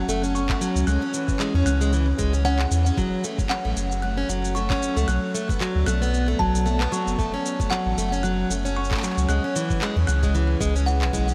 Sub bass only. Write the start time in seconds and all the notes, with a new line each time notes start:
0.08 F#1
0.75 C#2
0.87 C#2
1.54 E2
1.66 C#2
2.19 C#2
2.71 E2
2.97 F#1
3.65 A1
3.77 F#1
4.29 F#1
4.96 C#2
5.08 B1
5.75 D2
5.87 B1
6.40 B1
7.07 F#1
7.19 F#1
7.86 A1
7.97 F#1
8.50 F#1
9.17 C#2
9.29 C#2
9.96 E2
10.08 C#2
10.61 C#2
11.02 B1
11.13 B1